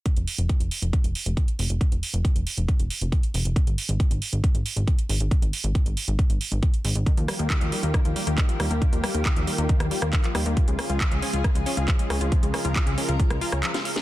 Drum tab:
HH |xxoxxxoxxxoxxxox|xxoxxxoxxxoxxxox|xxoxxxoxxxoxxxox|xxoxxxoxxxoxxxox|
CP |----------------|----------------|----------------|----------------|
SD |----------------|----------------|----------------|----------------|
BD |o---o---o---o---|o---o---o---o---|o---o---o---o---|o---o---o---o---|

HH |xxoxxxoxxxoxxxox|xxoxxxoxxxoxxxox|xxoxxxoxxxoxxxox|xxoxxxoxxxoxxxox|
CP |----x-------x---|----x-------xx--|----x-------x---|----x-------x---|
SD |--r-----r-----r-|--r------r-r--r-|--r-----r-----r-|--r------r-r-o-o|
BD |o---o---o---o---|o---o---o---o---|o---o---o---o---|o---o---o-------|